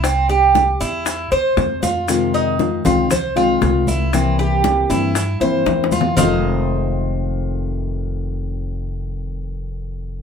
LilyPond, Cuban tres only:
\new Staff \with { instrumentName = "Cuban tres" } { \time 4/4 \key f \minor \tempo 4 = 117 c'8 g'4 e'4 c''4 f'8~ | f'8 ees'4 f'8 c''8 f'4 e'8 | c'8 g'4 e'4 c''4 f'8 | <f' c'' ees''>1~ |
<f' c'' ees''>1 | }